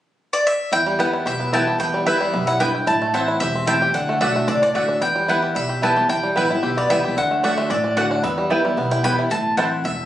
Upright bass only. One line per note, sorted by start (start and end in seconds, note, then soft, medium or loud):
0.73 1.14 E2 medium
1.26 1.67 B1 medium
1.80 2.21 E2 medium
2.33 2.75 B1 medium
2.87 3.28 A1 medium
3.41 3.82 E1 medium
3.95 4.15 D2 medium
4.21 4.44 B1 medium
4.48 4.71 C2 medium
4.75 4.98 D2 medium
5.02 5.43 E2 medium
5.56 5.97 B1 medium
6.09 6.30 E2 medium
6.37 6.59 A1 medium
6.63 6.86 B1 medium
6.90 7.13 C2 medium
7.17 7.58 D2 medium
7.70 8.12 A1 medium
8.24 8.65 E2 medium
8.77 9.19 B1 medium
9.31 9.72 A1 medium
9.85 10.05 E1 medium